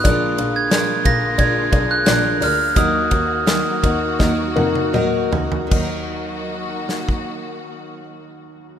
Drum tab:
CC |----------------|----------------|x---------------|
RD |x-x-x-x-x-x-x-x-|x-x-x-x---------|----------------|
HH |p-------------o-|p---------------|----------------|
SD |----o-------o-o-|----o---o-------|------o---------|
T1 |----------------|----------oo----|----------------|
T2 |----------------|------------o---|----------------|
FT |----------------|--------------oo|----------------|
BD |o-----o-o-o-----|o-o---o-o-------|o------o--------|